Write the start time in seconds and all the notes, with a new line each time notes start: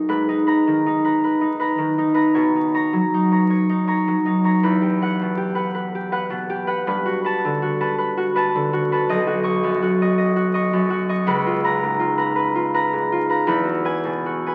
Already playing: B1 F#2 D#4 F#4 A#4 C#5
0.09 G#2 B4
0.29 D#4
0.47 B4 A#5
0.67 D#3
0.86 D#4
1.04 B4 A#5
1.24 B4
1.41 D#4
1.60 B4 A#5
1.78 D#3
1.98 D#4
2.14 B4 A#5
2.34 B2 C#5
2.56 D#4
2.74 C#5 A#5
2.93 F#3
3.14 D#4
3.32 C#5 A#5
3.50 C#5
3.70 D#4
3.87 C#5 A#5
4.08 F#3
4.26 D#4
4.44 C#5 A#5
4.63 E2 B4
4.81 G4
5.02 B4 F#5
5.21 B2
5.37 G4
5.55 B4 F#5
5.75 B4
5.95 G4
6.12 B4 F#5
6.30 B2
6.50 G4
6.67 B4 F#5
6.87 G2 B4
7.06 F#4
7.24 B4 A5
7.44 D3
7.62 F#4
7.81 B4 A5
7.98 B4
8.17 F#4
8.36 B4 A5
8.55 D3
8.73 F#4
8.92 B4 A5
9.09 B1 D#5
9.27 F#4
9.43 D#5 C#6
9.63 F#2
9.82 F#4
10.02 D#5 C#6
10.18 D#5
10.36 F#4
10.54 D#5 C#6
10.73 F#2
10.90 F#4
11.09 D#5 C#6
11.27 C#2 B4
11.46 F4
11.64 B4 A#5
11.83 G#2
11.99 F4
12.18 B4 A#5
12.35 B4
12.55 F4
12.74 B4 A#5
12.93 G#2
13.12 F4
13.29 B4 A#5
13.47 E2 B4
13.65 F#4
13.85 B4 G#5
14.05 B2
14.26 F#4
14.46 B4 G#5